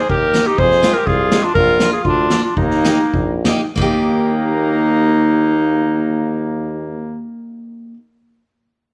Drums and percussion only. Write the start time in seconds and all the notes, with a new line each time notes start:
0.10 kick
0.35 snare, hi-hat pedal
0.58 kick
0.71 snare
0.83 snare, hi-hat pedal
1.07 kick
1.31 snare, hi-hat pedal
1.55 kick
1.80 snare, hi-hat pedal
2.05 kick
2.30 snare, hi-hat pedal
2.57 kick
2.71 snare
2.85 snare, hi-hat pedal
3.14 kick
3.45 snare, hi-hat pedal
3.77 kick, crash